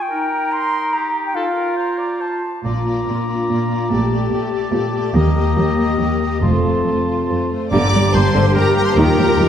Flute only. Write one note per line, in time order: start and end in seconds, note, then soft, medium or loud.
0.02 0.54 G5 medium
0.52 0.95 C6 medium
0.93 1.25 A#5 medium
1.26 1.36 G5 medium
1.35 1.78 F5 medium
1.78 2.23 A#5 medium
2.21 2.64 A5 medium
2.64 5.17 D6 soft
5.15 6.41 D#6 soft
6.42 7.49 C6 soft
7.72 8.15 A#5 medium
8.13 8.54 A5 medium
8.55 8.76 G5 medium
8.77 8.82 G5 medium
8.87 8.97 A5 medium
8.97 9.48 G5 medium